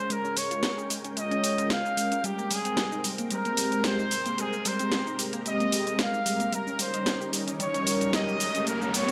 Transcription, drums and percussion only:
0.10 closed hi-hat medium
0.10 shaker soft
0.25 shaker soft
0.37 open hi-hat loud
0.37 shaker medium
0.51 closed hi-hat soft
0.51 shaker soft
0.63 snare loud
0.63 closed hi-hat medium
0.63 shaker soft
0.78 shaker soft
0.90 open hi-hat loud
0.90 shaker medium
1.05 closed hi-hat soft
1.05 shaker soft
1.17 closed hi-hat medium
1.17 shaker soft
1.31 closed hi-hat soft
1.31 shaker soft
1.44 open hi-hat loud
1.44 shaker medium
1.58 closed hi-hat soft
1.58 shaker soft
1.70 snare loud
1.70 closed hi-hat medium
1.70 shaker soft
1.86 shaker soft
1.97 open hi-hat loud
1.97 shaker medium
2.12 closed hi-hat medium
2.12 shaker soft
2.24 closed hi-hat medium
2.24 shaker soft
2.39 shaker soft
2.51 open hi-hat loud
2.51 shaker medium
2.65 closed hi-hat soft
2.65 shaker soft
2.77 snare loud
2.77 closed hi-hat medium
2.77 shaker soft
2.92 shaker soft
3.04 open hi-hat loud
3.04 shaker medium
3.18 closed hi-hat soft
3.18 shaker soft
3.31 closed hi-hat medium
3.31 shaker soft
3.45 closed hi-hat soft
3.45 shaker soft
3.57 open hi-hat loud
3.57 shaker medium
3.72 closed hi-hat soft
3.72 shaker soft
3.84 snare loud
3.84 closed hi-hat medium
3.84 shaker soft
3.99 shaker soft
4.11 open hi-hat loud
4.11 shaker medium
4.26 closed hi-hat soft
4.26 shaker soft
4.38 closed hi-hat medium
4.38 shaker soft
4.53 shaker soft
4.65 open hi-hat loud
4.65 shaker medium
4.79 closed hi-hat soft
4.79 shaker soft
4.92 snare loud
4.92 closed hi-hat medium
4.92 shaker soft
5.07 shaker soft
5.19 open hi-hat loud
5.19 shaker medium
5.33 closed hi-hat soft
5.33 shaker soft
5.46 closed hi-hat medium
5.46 shaker soft
5.60 closed hi-hat soft
5.60 shaker soft
5.72 open hi-hat loud
5.72 shaker medium
5.87 closed hi-hat soft
5.87 shaker soft
5.99 snare loud
5.99 closed hi-hat medium
5.99 shaker soft
6.14 shaker soft
6.26 open hi-hat loud
6.26 shaker medium
6.40 closed hi-hat soft
6.40 shaker soft
6.53 closed hi-hat medium
6.53 shaker soft
6.67 shaker soft
6.79 open hi-hat loud
6.79 shaker medium
6.94 closed hi-hat soft
6.94 shaker soft
7.06 snare loud
7.06 closed hi-hat medium
7.06 shaker soft
7.21 shaker soft
7.33 open hi-hat loud
7.33 shaker medium
7.48 closed hi-hat soft
7.48 shaker soft
7.60 closed hi-hat medium
7.60 shaker soft
7.74 closed hi-hat soft
7.74 shaker soft
7.87 open hi-hat loud
7.87 shaker medium
8.01 closed hi-hat soft
8.01 shaker soft
8.13 snare loud
8.13 closed hi-hat medium
8.13 shaker soft
8.29 shaker soft
8.40 open hi-hat loud
8.40 shaker medium
8.55 closed hi-hat soft
8.55 shaker soft
8.67 closed hi-hat medium
8.67 shaker soft
8.82 shaker soft
8.94 open hi-hat loud
8.94 shaker medium

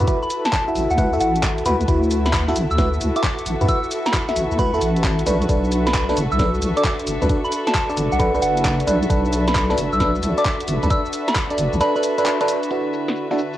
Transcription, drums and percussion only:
0.00 closed hi-hat soft
0.00 shaker soft
0.08 kick loud
0.08 closed hi-hat medium
0.08 shaker soft
0.23 shaker soft
0.30 open hi-hat loud
0.30 shaker medium
0.45 snare medium
0.45 closed hi-hat medium
0.45 shaker soft
0.53 kick loud
0.53 clap loud
0.53 shaker soft
0.68 shaker soft
0.75 open hi-hat loud
0.75 shaker medium
0.91 shaker soft
0.98 kick loud
0.98 closed hi-hat medium
0.98 shaker soft
1.13 shaker soft
1.20 open hi-hat loud
1.20 shaker medium
1.36 closed hi-hat medium
1.36 shaker soft
1.43 kick loud
1.43 clap loud
1.43 shaker soft
1.58 closed hi-hat soft
1.58 shaker soft
1.66 open hi-hat loud
1.66 shaker medium
1.81 closed hi-hat soft
1.81 shaker soft
1.88 kick loud
1.88 closed hi-hat medium
1.88 shaker soft
2.03 shaker soft
2.11 open hi-hat loud
2.11 shaker medium
2.26 snare medium
2.26 closed hi-hat medium
2.26 shaker soft
2.33 kick loud
2.33 clap loud
2.33 shaker soft
2.48 snare soft
2.48 shaker soft
2.56 open hi-hat loud
2.56 shaker medium
2.71 shaker soft
2.78 kick loud
2.78 snare medium
2.78 closed hi-hat medium
2.78 shaker soft
2.93 shaker soft
3.01 open hi-hat loud
3.01 shaker medium
3.16 closed hi-hat medium
3.16 shaker soft
3.23 kick loud
3.23 clap loud
3.23 shaker soft
3.39 closed hi-hat soft
3.39 shaker soft
3.46 open hi-hat loud
3.46 shaker medium
3.61 closed hi-hat soft
3.61 shaker soft
3.69 kick loud
3.69 closed hi-hat medium
3.69 shaker soft
3.84 shaker soft
3.91 open hi-hat loud
3.91 shaker medium
4.06 snare medium
4.06 closed hi-hat medium
4.06 shaker soft
4.14 kick loud
4.14 clap loud
4.14 shaker soft
4.29 snare soft
4.29 closed hi-hat soft
4.29 shaker soft
4.36 open hi-hat loud
4.36 shaker medium
4.51 shaker soft
4.59 kick loud
4.59 closed hi-hat medium
4.59 shaker soft
4.74 shaker soft
4.81 open hi-hat loud
4.81 shaker medium
4.96 closed hi-hat medium
4.96 shaker soft
5.04 kick loud
5.04 clap loud
5.04 shaker soft
5.19 closed hi-hat soft
5.19 shaker soft
5.27 open hi-hat loud
5.27 shaker medium
5.42 closed hi-hat soft
5.42 shaker soft
5.49 kick loud
5.49 closed hi-hat medium
5.49 shaker soft
5.64 shaker soft
5.72 open hi-hat loud
5.72 shaker medium
5.87 snare medium
5.87 closed hi-hat medium
5.87 shaker soft
5.94 kick loud
5.94 clap loud
5.94 shaker soft
6.09 snare soft
6.09 shaker soft
6.17 open hi-hat loud
6.17 shaker medium
6.32 shaker soft
6.39 kick loud
6.39 snare soft
6.39 closed hi-hat medium
6.39 shaker soft
6.54 shaker soft
6.62 open hi-hat loud
6.62 shaker medium
6.77 closed hi-hat medium
6.77 shaker soft
6.84 kick loud
6.84 clap loud
6.84 shaker soft
7.00 closed hi-hat medium
7.00 shaker soft
7.07 open hi-hat loud
7.07 shaker medium
7.22 closed hi-hat soft
7.22 shaker soft
7.29 kick loud
7.29 closed hi-hat medium
7.29 shaker soft
7.45 shaker soft
7.52 open hi-hat loud
7.52 shaker medium
7.67 snare medium
7.67 closed hi-hat medium
7.67 shaker soft
7.75 kick loud
7.75 clap loud
7.75 shaker soft
7.90 shaker soft
7.97 open hi-hat loud
7.97 shaker medium
8.12 shaker soft
8.20 kick loud
8.20 closed hi-hat medium
8.20 shaker soft
8.35 shaker soft
8.42 open hi-hat loud
8.42 shaker medium
8.57 closed hi-hat medium
8.57 shaker soft
8.65 kick loud
8.65 clap loud
8.65 shaker soft
8.80 closed hi-hat medium
8.80 shaker soft
8.87 open hi-hat loud
8.87 shaker medium
9.03 closed hi-hat soft
9.03 shaker soft
9.10 kick loud
9.10 closed hi-hat medium
9.10 shaker soft
9.25 shaker soft
9.33 open hi-hat loud
9.33 shaker medium
9.48 snare medium
9.48 closed hi-hat medium
9.48 shaker soft
9.55 kick loud
9.55 clap loud
9.55 shaker soft
9.70 snare soft
9.70 shaker soft
9.78 open hi-hat loud
9.78 shaker medium
9.93 shaker soft
10.00 kick loud
10.00 snare medium
10.00 closed hi-hat medium
10.00 shaker soft
10.15 shaker soft
10.23 open hi-hat loud
10.23 shaker medium
10.38 closed hi-hat medium
10.38 shaker soft
10.45 kick loud
10.45 clap loud
10.45 shaker soft
10.60 closed hi-hat medium
10.60 shaker soft
10.68 open hi-hat loud
10.68 shaker medium
10.83 closed hi-hat soft
10.83 shaker soft
10.90 kick loud
10.90 closed hi-hat medium
10.90 shaker soft
11.05 shaker soft
11.13 open hi-hat loud
11.13 shaker medium
11.28 snare medium
11.28 closed hi-hat medium
11.28 shaker soft
11.35 kick loud
11.35 clap loud
11.35 shaker soft
11.50 closed hi-hat soft
11.50 shaker soft
11.58 open hi-hat loud
11.58 shaker medium
11.73 shaker soft
11.81 closed hi-hat medium
11.81 shaker soft
11.96 shaker soft
12.03 open hi-hat loud
12.03 shaker medium
12.18 closed hi-hat medium
12.18 shaker soft
12.26 clap loud
12.26 shaker soft
12.41 closed hi-hat medium
12.41 shaker soft
12.48 open hi-hat loud
12.48 shaker medium
12.63 closed hi-hat soft
12.63 shaker soft
12.71 closed hi-hat medium
12.71 shaker soft
12.93 shaker medium
13.08 snare medium
13.08 closed hi-hat medium
13.08 shaker soft
13.16 shaker soft
13.31 snare soft
13.38 shaker medium
13.53 shaker soft

